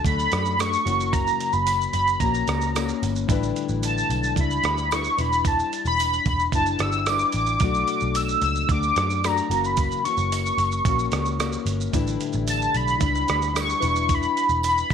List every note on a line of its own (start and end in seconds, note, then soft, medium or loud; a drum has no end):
0.04 0.26 D2 medium
0.04 0.57 F#3 medium
0.04 0.57 A3 medium
0.04 0.58 D4 medium
0.04 0.60 F#4 medium
0.04 0.61 B5 loud
0.04 kick medium
0.04 closed hi-hat medium
0.04 tambourine soft
0.04 shaker medium
0.19 shaker medium
0.32 0.75 F#2 medium
0.32 cross-stick medium
0.32 closed hi-hat medium
0.32 tambourine soft
0.32 shaker medium
0.46 shaker medium
0.58 0.85 F#3 medium
0.58 0.86 A3 medium
0.58 0.86 D4 medium
0.58 0.84 F#4 medium
0.58 1.14 C#6 loud
0.58 cross-stick loud
0.58 closed hi-hat medium
0.58 tambourine medium
0.58 shaker medium
0.73 shaker medium
0.85 1.29 F#1 loud
0.85 2.23 F#2 medium
0.85 2.22 C#3 medium
0.85 2.19 E3 medium
0.85 2.20 A#3 medium
0.85 2.21 C#4 medium
0.85 2.21 F#4 medium
0.85 closed hi-hat medium
0.85 tambourine soft
0.85 shaker medium
1.00 shaker medium
1.12 1.54 A#5 loud
1.12 kick loud
1.12 closed hi-hat medium
1.12 tambourine soft
1.12 shaker medium
1.27 shaker medium
1.40 closed hi-hat soft
1.40 tambourine soft
1.40 shaker soft
1.53 1.86 F#1 medium
1.53 1.92 B5 loud
1.53 shaker soft
1.67 closed hi-hat medium
1.67 tambourine medium
1.67 shaker medium
1.81 shaker medium
1.93 2.15 F#1 medium
1.93 2.21 B5 medium
1.93 closed hi-hat soft
1.93 tambourine medium
1.93 shaker soft
2.07 shaker medium
2.20 2.42 A#1 medium
2.20 2.74 E3 medium
2.20 2.74 A#3 medium
2.20 2.75 C#4 medium
2.20 2.76 F#4 medium
2.20 3.01 A#5 medium
2.20 kick medium
2.20 closed hi-hat medium
2.20 tambourine soft
2.20 shaker medium
2.34 shaker medium
2.47 2.91 C#2 medium
2.47 cross-stick medium
2.47 closed hi-hat medium
2.47 tambourine soft
2.47 shaker medium
2.61 shaker medium
2.74 3.28 E3 medium
2.74 3.29 A#3 medium
2.74 3.30 C#4 medium
2.74 3.30 F#4 medium
2.74 cross-stick loud
2.74 closed hi-hat medium
2.74 tambourine medium
2.74 shaker medium
2.89 shaker medium
3.03 3.24 G1 loud
3.03 closed hi-hat medium
3.03 tambourine soft
3.03 shaker soft
3.16 shaker soft
3.27 3.50 A1 loud
3.27 4.36 A2 medium
3.27 4.42 D3 loud
3.27 4.37 G3 medium
3.27 4.38 D4 loud
3.27 4.39 E4 loud
3.27 kick loud
3.27 closed hi-hat medium
3.27 tambourine soft
3.27 shaker medium
3.32 4.40 B4 loud
3.43 shaker soft
3.56 closed hi-hat soft
3.56 shaker soft
3.69 4.02 A1 medium
3.69 shaker soft
3.83 4.34 A5 medium
3.83 closed hi-hat medium
3.83 tambourine medium
3.83 shaker medium
3.98 shaker soft
4.10 4.31 B1 medium
4.10 closed hi-hat soft
4.10 tambourine soft
4.10 shaker soft
4.24 shaker medium
4.36 4.58 C#2 medium
4.36 4.91 G3 medium
4.36 4.92 D4 medium
4.36 4.93 E4 medium
4.36 kick medium
4.36 closed hi-hat medium
4.36 shaker medium
4.40 4.93 B4 medium
4.40 4.96 B5 loud
4.51 shaker medium
4.63 5.07 D2 medium
4.63 cross-stick medium
4.63 closed hi-hat medium
4.63 tambourine soft
4.63 shaker medium
4.78 shaker medium
4.91 5.18 G3 medium
4.91 5.19 D4 medium
4.91 5.18 E4 medium
4.91 5.16 B4 medium
4.91 5.22 C#6 loud
4.91 cross-stick loud
4.91 closed hi-hat medium
4.91 tambourine medium
4.91 shaker medium
5.04 shaker medium
5.18 5.61 E1 medium
5.18 6.52 G3 medium
5.18 6.54 D4 medium
5.18 6.54 E4 medium
5.18 6.55 B4 medium
5.18 5.49 B5 loud
5.18 closed hi-hat medium
5.18 tambourine soft
5.18 shaker medium
5.22 6.55 E3 medium
5.33 shaker medium
5.45 5.87 A5 loud
5.45 kick loud
5.45 closed hi-hat medium
5.45 tambourine soft
5.45 shaker medium
5.59 shaker soft
5.73 closed hi-hat medium
5.73 tambourine soft
5.73 shaker soft
5.85 6.18 E1 medium
5.85 6.24 B5 loud
5.85 shaker soft
5.99 closed hi-hat medium
5.99 tambourine medium
5.99 shaker medium
6.13 shaker medium
6.26 6.48 E1 medium
6.26 6.40 B5 loud
6.26 kick medium
6.26 closed hi-hat soft
6.26 tambourine medium
6.26 shaker soft
6.39 shaker medium
6.52 6.74 F#1 medium
6.52 7.07 G3 medium
6.52 7.09 D4 medium
6.52 7.08 E4 medium
6.52 7.11 B4 medium
6.52 6.83 A5 loud
6.52 kick loud
6.52 closed hi-hat medium
6.52 tambourine soft
6.52 shaker medium
6.66 shaker medium
6.79 7.23 G1 medium
6.79 7.11 E6 loud
6.79 cross-stick medium
6.79 closed hi-hat medium
6.79 tambourine soft
6.79 shaker medium
6.92 shaker medium
7.06 7.61 G3 medium
7.06 7.62 D4 medium
7.06 7.35 D6 loud
7.06 cross-stick medium
7.06 closed hi-hat medium
7.06 tambourine medium
7.06 shaker medium
7.10 7.63 E4 medium
7.10 7.63 B4 medium
7.19 shaker medium
7.32 7.56 A1 medium
7.32 8.18 D6 loud
7.32 closed hi-hat medium
7.32 tambourine soft
7.32 shaker medium
7.47 shaker medium
7.60 7.82 B1 loud
7.60 8.69 B2 medium
7.60 8.69 F#3 medium
7.60 8.70 A3 medium
7.60 8.70 D4 medium
7.60 kick loud
7.60 closed hi-hat medium
7.60 tambourine soft
7.60 shaker medium
7.65 8.72 F#4 medium
7.74 shaker soft
7.88 closed hi-hat soft
7.88 tambourine soft
7.88 shaker soft
8.00 8.34 B1 medium
8.00 shaker soft
8.15 8.43 E6 loud
8.15 closed hi-hat medium
8.15 tambourine medium
8.15 shaker medium
8.29 shaker medium
8.42 8.64 C#2 medium
8.42 8.68 E6 loud
8.42 closed hi-hat soft
8.42 tambourine soft
8.42 shaker soft
8.55 shaker medium
8.69 8.91 D2 medium
8.69 9.23 F#3 medium
8.69 9.24 A3 medium
8.69 9.24 D4 medium
8.69 9.26 F#4 medium
8.69 9.25 D6 loud
8.69 kick loud
8.69 closed hi-hat medium
8.69 tambourine soft
8.69 shaker medium
8.83 shaker medium
8.96 9.40 F#2 medium
8.96 cross-stick medium
8.96 closed hi-hat medium
8.96 tambourine soft
8.96 shaker medium
9.10 shaker medium
9.23 9.50 F#3 medium
9.23 9.51 A3 medium
9.23 9.50 D4 medium
9.23 9.49 F#4 medium
9.23 9.67 A#5 medium
9.23 cross-stick medium
9.23 closed hi-hat medium
9.23 tambourine medium
9.23 shaker medium
9.37 shaker medium
9.50 9.93 F#1 loud
9.50 10.05 F#2 medium
9.50 10.05 C#3 medium
9.50 10.07 E3 medium
9.50 10.05 A#3 medium
9.50 10.04 C#4 medium
9.50 10.04 F#4 medium
9.50 closed hi-hat medium
9.50 tambourine soft
9.50 shaker medium
9.64 10.04 B5 medium
9.64 shaker medium
9.77 kick loud
9.77 closed hi-hat medium
9.77 tambourine soft
9.77 shaker medium
9.92 shaker medium
10.05 10.85 E3 soft
10.05 10.85 A#3 soft
10.05 10.86 C#4 soft
10.05 10.86 F#4 soft
10.05 11.63 C#6 medium
10.05 closed hi-hat soft
10.05 tambourine soft
10.05 shaker soft
10.17 10.50 F#1 loud
10.17 shaker soft
10.32 closed hi-hat medium
10.32 tambourine medium
10.32 shaker medium
10.46 shaker medium
10.58 10.80 F#1 loud
10.58 closed hi-hat soft
10.58 tambourine medium
10.58 shaker soft
10.72 shaker soft
10.85 11.07 A#1 medium
10.85 11.38 E3 medium
10.85 11.38 A#3 medium
10.85 11.40 C#4 medium
10.85 11.40 F#4 medium
10.85 kick medium
10.85 closed hi-hat medium
10.85 tambourine soft
10.85 shaker medium
10.99 shaker medium
11.12 11.55 C#2 medium
11.12 cross-stick medium
11.12 closed hi-hat medium
11.12 tambourine soft
11.12 shaker medium
11.26 shaker medium
11.38 11.93 E3 medium
11.38 11.93 A#3 medium
11.38 11.94 C#4 medium
11.38 11.95 F#4 medium
11.38 cross-stick loud
11.38 closed hi-hat medium
11.38 tambourine medium
11.38 shaker medium
11.52 shaker medium
11.66 11.88 G1 loud
11.66 closed hi-hat medium
11.66 tambourine soft
11.66 shaker medium
11.81 shaker medium
11.91 12.15 A1 loud
11.91 13.00 A2 medium
11.91 13.04 D3 medium
11.91 12.99 G3 medium
11.91 13.00 D4 loud
11.91 13.01 E4 loud
11.91 kick loud
11.91 closed hi-hat medium
11.91 tambourine soft
11.91 shaker medium
11.96 13.01 B4 loud
12.07 shaker medium
12.21 closed hi-hat medium
12.21 shaker medium
12.33 12.67 A1 medium
12.33 shaker soft
12.48 12.78 A5 loud
12.48 closed hi-hat medium
12.48 tambourine medium
12.48 shaker medium
12.62 shaker soft
12.74 12.96 B1 medium
12.74 13.57 B5 loud
12.74 closed hi-hat soft
12.74 tambourine medium
12.74 shaker soft
12.88 shaker medium
12.99 13.23 C#2 medium
12.99 13.53 G3 medium
12.99 13.53 D4 medium
12.99 13.55 E4 medium
12.99 13.56 B4 medium
12.99 kick loud
12.99 closed hi-hat medium
12.99 tambourine soft
12.99 shaker medium
13.15 shaker medium
13.28 13.72 D2 medium
13.28 cross-stick medium
13.28 closed hi-hat medium
13.28 tambourine soft
13.28 shaker medium
13.42 shaker medium
13.53 13.81 G3 medium
13.53 13.80 D4 medium
13.53 13.80 E4 medium
13.53 13.79 B4 medium
13.53 cross-stick loud
13.53 closed hi-hat medium
13.53 tambourine medium
13.53 shaker medium
13.60 14.16 C#6 loud
13.69 shaker medium
13.80 14.26 E1 medium
13.80 14.94 E3 medium
13.80 14.94 G3 medium
13.80 14.94 D4 medium
13.80 14.94 E4 medium
13.80 14.94 B4 medium
13.80 closed hi-hat medium
13.80 tambourine medium
13.80 shaker medium
13.96 shaker medium
14.09 kick loud
14.09 closed hi-hat medium
14.09 tambourine soft
14.09 shaker medium
14.15 14.66 B5 loud
14.23 shaker soft
14.37 closed hi-hat soft
14.37 shaker medium
14.49 14.82 E1 medium
14.49 shaker soft
14.63 closed hi-hat medium
14.63 tambourine medium
14.63 shaker medium
14.68 14.94 B5 medium
14.78 shaker medium
14.90 14.94 E1 medium
14.90 kick loud
14.90 tambourine medium